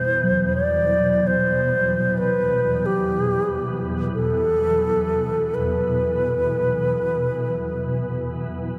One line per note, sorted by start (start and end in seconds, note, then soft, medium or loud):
0.00 8.79 E2 medium
0.00 8.79 B2 medium
0.00 1.47 G3 medium
0.00 0.53 C5 medium
0.24 7.82 F#3 soft
0.56 1.28 D5 medium
1.27 2.19 C5 medium
2.18 2.87 B4 medium
2.86 3.86 G4 medium
4.15 5.56 A4 medium
5.54 8.31 B4 medium